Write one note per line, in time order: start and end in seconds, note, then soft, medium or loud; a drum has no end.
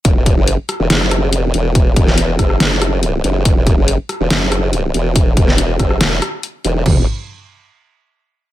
0.05 0.35 E1 loud
0.05 kick loud
0.05 closed hi-hat medium
0.26 kick loud
0.26 closed hi-hat medium
0.37 0.57 F#1 loud
0.48 closed hi-hat medium
0.69 cross-stick medium
0.69 closed hi-hat medium
0.80 0.88 E1 loud
0.90 1.34 F#1 loud
0.90 snare loud
0.90 closed hi-hat medium
1.01 cross-stick medium
1.11 cross-stick medium
1.11 closed hi-hat medium
1.33 1.52 F1 loud
1.33 closed hi-hat medium
1.54 1.95 E1 loud
1.54 closed hi-hat medium
1.75 kick loud
1.75 closed hi-hat medium
1.96 2.37 E1 loud
1.96 kick loud
1.96 closed hi-hat medium
2.07 snare soft
2.18 closed hi-hat medium
2.39 2.59 F#1 loud
2.39 kick medium
2.39 cross-stick medium
2.39 closed hi-hat medium
2.50 cross-stick medium
2.60 3.23 F#1 loud
2.60 snare loud
2.60 closed hi-hat medium
2.71 cross-stick medium
2.82 cross-stick medium
2.82 closed hi-hat medium
3.03 closed hi-hat medium
3.24 3.44 F#1 loud
3.24 closed hi-hat medium
3.45 3.76 E1 medium
3.45 kick loud
3.45 closed hi-hat medium
3.67 kick loud
3.67 closed hi-hat medium
3.78 3.97 F#1 loud
3.88 closed hi-hat medium
4.09 cross-stick medium
4.09 closed hi-hat medium
4.20 4.29 E1 loud
4.30 4.93 F#1 loud
4.30 snare loud
4.30 closed hi-hat medium
4.41 cross-stick soft
4.52 cross-stick medium
4.52 closed hi-hat medium
4.73 closed hi-hat medium
4.94 5.35 E1 loud
4.94 closed hi-hat medium
5.16 kick loud
5.16 closed hi-hat medium
5.37 5.78 E1 loud
5.37 kick loud
5.37 closed hi-hat medium
5.48 snare soft
5.58 closed hi-hat medium
5.79 5.99 F#1 loud
5.79 kick medium
5.79 cross-stick medium
5.79 closed hi-hat medium
5.90 cross-stick medium
6.01 6.20 E1 loud
6.01 snare loud
6.01 closed hi-hat medium
6.12 cross-stick medium
6.22 cross-stick medium
6.22 closed hi-hat medium
6.43 closed hi-hat medium
6.65 6.84 E1 loud
6.65 closed hi-hat medium
6.86 7.06 E1 loud
6.86 kick loud
6.86 floor tom loud
6.86 crash medium